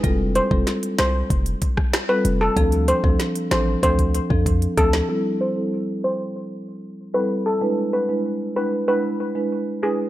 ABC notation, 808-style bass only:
X:1
M:4/4
L:1/16
Q:1/4=95
K:Am
V:1 name="808-style bass" clef=bass
F,,,3 F,,, z2 C,,2 F,,,2 z4 F,,,2 | D,,3 D,, z2 A,,,2 D,,3 F,,3 D,,2 | z16 | z16 |]